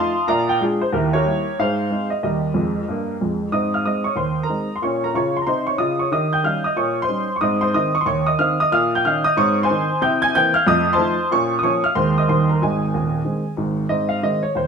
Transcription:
Already playing: A3 D#4 F4 F5 A5 C6
0.28 A#2 D5 F5 A#5
0.49 G5
0.60 G#3 D4 F4 G#4
0.81 C5
0.93 D#2 E4 G4 A#4
1.13 G4 A#4 C#5
1.25 G3 A#3 E4
1.59 G#2 G#4 C5 F5
1.90 G#3 C4 D#4
2.10 D#5
2.23 D#2 G3 G4 A#4 D#5
2.54 F2 G#3
2.88 G2 A#3
3.21 F2 G#3
3.52 G#2 C4 D#5 D#6
3.74 F5 F6
3.85 G#3 C4 D#4 D#5 D#6
4.04 C#5 C#6
4.16 D#2 C5 C6
4.43 A#4 A#5
4.49 G#3 C4 D#4
4.76 C6
4.82 A#2 C#4 C#5 C#6
5.04 A#4 A#5
5.14 C#3 F4 C#5 C#6
5.37 C6
5.42 A#5
5.47 C3 D#4 C5 C6
5.67 C#5 C#6
5.78 C#3 F4 D#5 D#6
5.99 C#5 C#6
6.12 D#3 G4 D#5 D#6
6.33 G5 G6
6.44 G3 C#4 D#4 F5 F6
6.64 D#5 D#6
6.76 A#2 C#5 C#6
7.02 C5 C6
7.09 G3 C#4 D#4
7.36 C#6
7.41 G#2 C4 D#5 D#6
7.61 C5 C6
7.74 D#3 C4 D#4 D#5 D#6
7.95 C#6
8.01 C6
8.06 D#2 C#5 C#6
8.27 D#5 D#6
8.39 D#3 C4 D#4 F5 F6
8.60 D#5 D#6
8.72 A#2 F5 F6
8.95 G5 G6
9.05 D#3 C#4 D#4 F5 F6
9.24 D#5 D#6
9.37 G#2 C4 C#5 C#6
9.63 C5 G#5 C6
9.71 D#3 C4 D#4
10.02 C3 E4 G5 G6
10.22 G#5 G#6
10.35 E3 A#3 C4 G5 G6
10.54 F5 F6
10.67 F2 A3 D#5 D#6
10.93 C5 A5 C6
10.98 F3 A3 D#4
11.31 A#2 C#4 C#5 C#6
11.59 F3 D#6
11.63 A#3 C#4 C#5 C#6
11.84 F5 F6
11.95 D#2 D#3 G#3 D#4 C5 C6
12.18 D#5 D#6
12.28 D#2 D#3 G3 D#4 C5 C6
12.49 A#4 A#5
12.62 G#1 G#2 G#4 D#5 G#5
12.94 D#1 D#2
13.25 D#3 G#3 C4
13.57 G#1 G#2
13.89 G#2 C4 D#5
14.09 F5
14.23 D#3 G#3 C4 D#5
14.43 C#5
14.55 D#2 C5

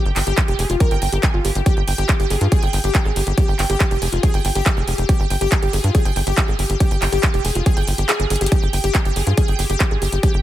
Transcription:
0.05 G1 G5
0.16 G1 G5, clap, open hi-hat
0.27 G1 G4, closed hi-hat
0.38 kick, clap, closed hi-hat
0.48 F1 G4, closed hi-hat
0.59 F1 G#4, open hi-hat
0.70 F1 F4, closed hi-hat
0.80 A#4, kick, closed hi-hat
0.91 G1 G5, closed hi-hat
1.02 G1 G5, open hi-hat
1.13 G1 G4, closed hi-hat
1.23 G#5, kick, clap, closed hi-hat
1.34 G1 F4
1.45 G1 G4, open hi-hat
1.55 G1 G4, closed hi-hat
1.66 G4, kick, closed hi-hat
1.77 G1 G5
1.88 G1 G5, open hi-hat
1.98 G1 G4, closed hi-hat
2.09 G4, kick, clap, closed hi-hat
2.20 G1 G4, closed hi-hat
2.30 G1 G#4, open hi-hat
2.41 G2 F4, closed hi-hat
2.52 G#4, kick, closed hi-hat
2.63 G1 G5, closed hi-hat
2.73 G1 G5, open hi-hat
2.84 G1 G4, closed hi-hat
2.95 G4, kick, clap, closed hi-hat
3.05 G#1 G#4
3.16 G1 G4, open hi-hat
3.27 G1 G4, closed hi-hat
3.38 G4, kick, closed hi-hat
3.48 G1 G5
3.59 G1 G5, clap, open hi-hat
3.70 G1 G4, closed hi-hat
3.80 G4, kick, clap, closed hi-hat
3.91 F1 G4, closed hi-hat
4.02 F1 G#4, open hi-hat
4.13 F1 F4, closed hi-hat
4.23 G#4, kick, closed hi-hat
4.34 G1 G5, closed hi-hat
4.45 G1 G5, open hi-hat
4.55 G1 G4, closed hi-hat
4.66 kick, clap, closed hi-hat
4.77 F1 G#4
4.88 F1 G4, open hi-hat
4.98 F1 G4, closed hi-hat
5.09 G4, kick, closed hi-hat
5.20 G1 G5
5.30 G1 G5, open hi-hat
5.41 G1 G4, closed hi-hat
5.52 G4, kick, clap, closed hi-hat
5.63 G1 G4, closed hi-hat
5.73 G1 G#4, open hi-hat
5.84 G2 F4, closed hi-hat
5.95 G#4, kick, closed hi-hat
6.05 G1 G5, closed hi-hat
6.16 G1 G5, open hi-hat
6.27 G1 G4, closed hi-hat
6.38 kick, clap, closed hi-hat
6.48 G#1 G#4
6.59 G1 G4, open hi-hat
6.70 G1 G4, closed hi-hat
6.80 G4, kick, closed hi-hat
6.91 G1 G5, closed hi-hat
7.02 G1 G5, clap, open hi-hat
7.12 G1 G4, closed hi-hat
7.23 G4, kick, clap, closed hi-hat
7.34 F1 G4, closed hi-hat
7.45 F1 G#4, open hi-hat
7.55 F1 F4, closed hi-hat
7.66 G#4, kick, closed hi-hat
7.77 G1 G5, closed hi-hat
7.88 G1 G5, open hi-hat
7.98 G1 G4, closed hi-hat
8.09 G#4, clap, closed hi-hat
8.20 G1 G#4, closed hi-hat
8.30 G1 G#4, closed hi-hat, open hi-hat
8.36 closed hi-hat
8.41 G1 G4, closed hi-hat
8.46 closed hi-hat
8.52 G4, kick, closed hi-hat
8.63 G1 G5
8.73 G1 G5, open hi-hat
8.84 G1 G4, closed hi-hat
8.95 G4, kick, clap, closed hi-hat
9.05 G1 G4, closed hi-hat
9.16 G1 G#4, open hi-hat
9.27 G2 F4, closed hi-hat
9.37 G#4, kick, closed hi-hat
9.48 G1 G5, closed hi-hat
9.59 G1 G4, open hi-hat
9.70 G1 G4, closed hi-hat
9.80 G4, kick, clap, closed hi-hat
9.91 G#1 G#4
10.02 G1 G4, open hi-hat
10.12 G1 G4, closed hi-hat
10.23 G4, kick, closed hi-hat
10.34 G1 G5

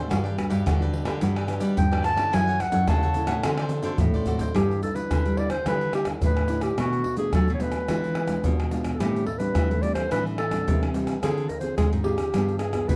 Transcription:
0.09 G2 G3 D4 F#4 G4 B4 D5, pandeiro, tamborim, shaker, surdo
0.24 G4 B4 D5, pandeiro, shaker
0.37 D4 F#4 B4, muted cavaquinho stroke, pandeiro, tamborim, shaker, surdo
0.50 G2 G4 B4 D5, pandeiro, shaker, surdo
0.66 D3 F#4 G4 B4 D5, pandeiro, tamborim, shaker, surdo
0.80 D4 F#4 G4 B4 D5, pandeiro, shaker
0.93 pandeiro
1.05 D3 D4 F#4 G4 B4 D5, pandeiro, tamborim, shaker, surdo
1.21 G2 G3 D4 F#4 G4 B4 D5, pandeiro, shaker, surdo
1.36 G4 B4 D5, pandeiro, tamborim, shaker
1.48 D4 F#4 B4, pandeiro, tamborim, shaker
1.60 G3 G4 B4 D5, pandeiro, shaker
1.77 G2 D3 G5, muted cavaquinho stroke, pandeiro, shaker, surdo
1.92 D4 F#4 G4 B4 D5, pandeiro, tamborim, shaker
2.02 F#4 G4 B4 D5 A5, pandeiro, tamborim, shaker
2.16 C#4 E4 G4 A4 B4 D5, pandeiro, tamborim, shaker, surdo
2.31 F#2 F#3 E4 A4 C#5 F#5 G#5, pandeiro, tamborim, shaker, surdo
2.47 A4 C#5 F#5, pandeiro, shaker
2.59 F#5, muted cavaquinho stroke, pandeiro, tamborim, shaker, surdo
2.72 F#2 C#4 E4 A4 C#5 F#5, pandeiro, shaker, surdo
2.88 C#3 E4 A4 C#5 F#5 A5, pandeiro, tamborim, shaker, surdo
3.03 A4 C#5 F#5, pandeiro, shaker
3.14 C#4 E4 A4, pandeiro, shaker
3.27 A2 A4 C#5 F#5, pandeiro, tamborim, shaker, surdo
3.43 D3 C4 F#4 A4 C5 D5, pandeiro, tamborim, shaker, surdo
3.58 A4 C5 D5, pandeiro, tamborim, shaker
3.69 pandeiro, shaker
3.83 D3 C4 F#4 A4 C5 D5, pandeiro, shaker
3.98 A2, muted cavaquinho stroke, surdo, pandeiro, shaker
4.14 A4 C5 D5, pandeiro, shaker, surdo
4.26 C4 F#4 A4 C5 D5, pandeiro, shaker, surdo
4.39 A4 C5 D5, pandeiro, shaker, surdo
4.54 G2 G3 D4 E4 G4 B4, pandeiro, tamborim, shaker, surdo
4.71 pandeiro, shaker
4.83 A4, pandeiro, shaker, surdo
4.94 D4 E4 B4, pandeiro, shaker
5.11 D3, pandeiro, tamborim, shaker, surdo
5.25 G3, pandeiro, shaker
5.37 D4 E4 B4 D5, pandeiro, surdo
5.50 C5, pandeiro, tamborim, shaker, surdo
5.66 D3 G3 D4 E4 B4, pandeiro, tamborim, shaker, surdo
5.81 pandeiro, shaker
5.93 G4, pandeiro, tamborim, shaker
6.05 D4 E4 B4, pandeiro, tamborim, shaker, surdo
6.22 A2 D3 B4, pandeiro, shaker, surdo
6.37 pandeiro, tamborim, shaker
6.48 D4 E4 B4, pandeiro, shaker
6.61 G4, pandeiro, tamborim, shaker, surdo
6.78 B2 A3 D4 F#4, pandeiro, tamborim, shaker, surdo
6.93 pandeiro, shaker
7.04 pandeiro, surdo
7.17 A3 D4 F#4 G#4, pandeiro, shaker
7.33 F#3 A4, pandeiro, tamborim, shaker, surdo
7.47 B2, pandeiro, shaker
7.54 C#5
7.60 A3 D4 F#4 B4, pandeiro, shaker, surdo
7.72 pandeiro, tamborim, shaker, surdo
7.88 E3 G#3 D4 F4, pandeiro, tamborim, shaker, surdo
8.04 pandeiro, shaker
8.15 pandeiro, tamborim
8.28 G#3 D4 F4, pandeiro, tamborim, shaker, surdo
8.44 B2, pandeiro, shaker, surdo
8.60 pandeiro, tamborim, shaker
8.71 G#3 D4 F4, pandeiro, shaker
8.84 pandeiro, tamborim, shaker, surdo
8.94 A4
8.99 A2 G3 C4 D4 G4, pandeiro, tamborim, shaker, surdo
9.16 pandeiro, shaker
9.26 A4, pandeiro, surdo
9.38 G3 C4 D4 B4, pandeiro, shaker
9.55 E3, pandeiro, tamborim, shaker, surdo
9.71 A3, pandeiro, shaker
9.82 G3 C4 D4 D5, pandeiro, shaker, surdo
9.94 C5, pandeiro, tamborim, shaker, surdo
10.11 A2 E3 G3 C4 D4 B4, pandeiro, tamborim, shaker, surdo
10.26 pandeiro, shaker
10.38 A4, pandeiro, tamborim
10.51 G3 C4 D4, pandeiro, tamborim, shaker, surdo
10.67 C3 E3, pandeiro, shaker, surdo
10.83 pandeiro, tamborim, shaker
10.94 G3 C4 D4, pandeiro, shaker
11.07 pandeiro, tamborim, shaker, surdo
11.22 D3 C4 F4 G#4, pandeiro, tamborim, shaker, surdo
11.37 pandeiro, shaker
11.48 A#4, pandeiro, shaker, surdo
11.60 C4 F4 G#4 C5, pandeiro, shaker
11.77 D3 G#3 G#4, pandeiro, tamborim, shaker, surdo
11.93 G#2, pandeiro, shaker
12.04 C4 F4 G4 G#4, pandeiro
12.18 pandeiro, tamborim, shaker, surdo
12.34 G2 G3 B3 F4 G#4, pandeiro, tamborim, shaker, surdo
12.48 pandeiro, shaker
12.58 G#4, pandeiro, tamborim, shaker
12.73 B3 F4 G#4, pandeiro, tamborim, shaker, surdo
12.88 B2 D3 B4, pandeiro, shaker, surdo

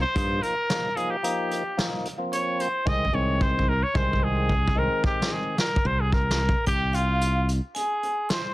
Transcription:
0.01 C5
0.15 G2 F3 A#3 D#4, kick, closed hi-hat
0.42 A#4, closed hi-hat
0.69 F3 A#3 D#4, snare, closed hi-hat
0.96 F3 A#3 D#4 G#4, closed hi-hat
1.10 G4
1.23 F3 A#3 D#4, closed hi-hat
1.51 closed hi-hat
1.77 F3 A#3 D#4, snare, closed hi-hat
2.05 closed hi-hat
2.18 F3 A#3 C4
2.33 C#5, closed hi-hat
2.60 C5, closed hi-hat
2.85 C2 D#3 G#3 C4 D#5, kick
3.05 kick
3.12 C2 D#3 G#3 C4 C#5
3.41 C5, kick
3.59 kick
3.69 A#4
3.83 C#5
3.94 C2 D#3 G#3 C4 C5, kick
4.13 kick
4.23 G#4
4.49 kick
4.68 kick
4.75 D#3 G#3 C4 A#4
5.04 G4, kick
5.22 snare
5.32 G#4
5.58 A#4, snare
5.76 kick
5.85 C2 C5
6.00 G#4
6.12 A#4, kick
6.31 snare
6.49 kick
6.67 C2 G4 G5, kick, closed hi-hat
6.93 F4 F5, closed hi-hat
7.21 closed hi-hat
7.49 closed hi-hat
7.75 G#4 G#5, closed hi-hat
8.03 closed hi-hat
8.29 C5 C6, snare, closed hi-hat

